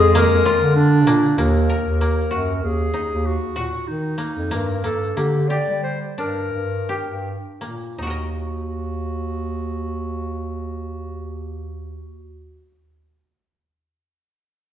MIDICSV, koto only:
0, 0, Header, 1, 2, 480
1, 0, Start_track
1, 0, Key_signature, -6, "minor"
1, 0, Tempo, 621762
1, 1074, Time_signature, 5, 2, 24, 8
1, 2999, Tempo, 646552
1, 3959, Tempo, 680272
1, 4919, Tempo, 727273
1, 5879, Tempo, 756620
1, 10150, End_track
2, 0, Start_track
2, 0, Title_t, "Koto"
2, 0, Program_c, 0, 107
2, 0, Note_on_c, 0, 56, 87
2, 0, Note_on_c, 0, 59, 81
2, 0, Note_on_c, 0, 65, 80
2, 0, Note_on_c, 0, 68, 85
2, 115, Note_on_c, 0, 58, 93
2, 162, Note_off_c, 0, 59, 0
2, 348, Note_off_c, 0, 65, 0
2, 351, Note_on_c, 0, 65, 88
2, 681, Note_off_c, 0, 68, 0
2, 823, Note_off_c, 0, 58, 0
2, 826, Note_on_c, 0, 58, 87
2, 1064, Note_off_c, 0, 58, 0
2, 1067, Note_on_c, 0, 58, 74
2, 1113, Note_off_c, 0, 56, 0
2, 1308, Note_on_c, 0, 70, 57
2, 1549, Note_off_c, 0, 58, 0
2, 1552, Note_on_c, 0, 58, 64
2, 1782, Note_on_c, 0, 66, 60
2, 1828, Note_off_c, 0, 65, 0
2, 2267, Note_on_c, 0, 63, 61
2, 2728, Note_off_c, 0, 70, 0
2, 2744, Note_off_c, 0, 66, 0
2, 2747, Note_on_c, 0, 66, 61
2, 3214, Note_off_c, 0, 58, 0
2, 3217, Note_on_c, 0, 58, 57
2, 3461, Note_off_c, 0, 58, 0
2, 3464, Note_on_c, 0, 58, 69
2, 3704, Note_off_c, 0, 58, 0
2, 3707, Note_on_c, 0, 58, 54
2, 3949, Note_off_c, 0, 58, 0
2, 3952, Note_on_c, 0, 58, 60
2, 4031, Note_off_c, 0, 63, 0
2, 4187, Note_on_c, 0, 67, 56
2, 4229, Note_off_c, 0, 66, 0
2, 4666, Note_on_c, 0, 62, 53
2, 5149, Note_off_c, 0, 67, 0
2, 5151, Note_on_c, 0, 67, 51
2, 5624, Note_off_c, 0, 58, 0
2, 5627, Note_on_c, 0, 58, 48
2, 5874, Note_on_c, 0, 63, 44
2, 5900, Note_on_c, 0, 66, 44
2, 5912, Note_off_c, 0, 62, 0
2, 5926, Note_on_c, 0, 70, 45
2, 5938, Note_off_c, 0, 67, 0
2, 5948, Note_on_c, 0, 75, 47
2, 7404, Note_off_c, 0, 58, 0
2, 8611, Note_off_c, 0, 63, 0
2, 8637, Note_off_c, 0, 66, 0
2, 8663, Note_off_c, 0, 70, 0
2, 8685, Note_off_c, 0, 75, 0
2, 10150, End_track
0, 0, End_of_file